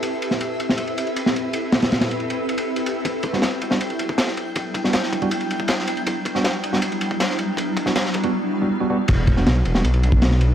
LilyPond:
<<
  \new Staff \with { instrumentName = "Synth texture" } { \time 4/4 \key e \minor \tempo 4 = 159 e''1~ | e''1 | g''1~ | g''1~ |
g''1~ | g''2 r2 | r1 | }
  \new Staff \with { instrumentName = "Ambient pad" } { \time 4/4 \key e \minor <c' e' g' a' b'>1~ | <c' e' g' a' b'>1 | r1 | r1 |
r1 | r1 | r1 | }
  \new Staff \with { instrumentName = "Tine electric piano" } { \time 4/4 \key e \minor r1 | r1 | r8. <g b d' fis'>16 r8. <g b d' fis'>16 r2 | r8. <g b d' fis'>16 r8. <g b d' fis'>16 r2 |
r8. <g b d' fis'>16 r8. <g b d' fis'>16 r2 | r8. <g b d' fis'>16 r8. <g b d' fis'>16 r8. <g b d' fis'>16 r16 <g b d' fis'>16 <g b d' fis'>16 r16 | r8. <g b d' fis'>16 r8. <g b d' fis'>16 r2 | }
  \new Staff \with { instrumentName = "Detuned saw bass" } { \clef bass \time 4/4 \key e \minor r1 | r1 | r1 | r1 |
r1 | r1 | e,,4 b,,8 e,,8 b,,2 | }
  \new DrumStaff \with { instrumentName = "Drums" } \drummode { \time 4/4 cymr8 cymr16 sn16 cymr8 cymr16 sn16 cymr16 cymr16 cymr16 cymr16 cymr16 sn16 cymr8 | cymr8 <cymr sn>16 <cymr sn>16 <cymr sn>16 <cymr sn>16 cymr16 cymr16 cymr8 cymr16 cymr16 r16 cymr16 cymr8 | <bd cymr>8 <bd cymr>16 sn16 <cymr sn>8 cymr16 sn16 cymr16 cymr16 cymr16 bd16 <cymr sn>16 sn16 cymr8 | <bd cymr>8 <bd cymr>16 sn16 <cymr sn>16 sn16 <bd cymr>16 cymr16 cymr16 cymr16 cymr16 bd16 <cymr sn>16 sn16 cymr16 cymr16 |
<bd cymr>8 <bd cymr>16 sn16 <cymr sn>8 cymr16 sn16 cymr16 cymr16 cymr16 bd16 <cymr sn>16 sn16 cymr8 | <bd cymr>8 <bd cymr>16 sn16 <cymr sn>16 sn16 <bd cymr>16 cymr16 r4 r4 | <cymc bd cymr>8 <bd cymr>16 sn16 <cymr sn>8 cymr16 sn16 cymr16 cymr16 cymr16 bd16 <cymr sn>16 sn16 cymr8 | }
>>